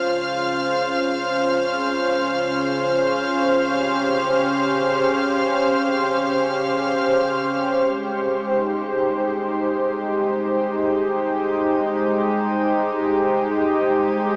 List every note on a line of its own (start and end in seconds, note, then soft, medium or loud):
0.00 7.78 C#2 medium
0.00 7.83 C#3 medium
0.00 7.83 C#4 medium
0.00 3.81 F4 medium
0.00 14.36 C5 medium
0.00 7.85 F5 medium
0.00 7.84 F6 medium
3.56 14.36 G4 medium
7.82 14.36 G#1 medium
7.82 14.36 G#3 medium
8.38 14.36 D#4 medium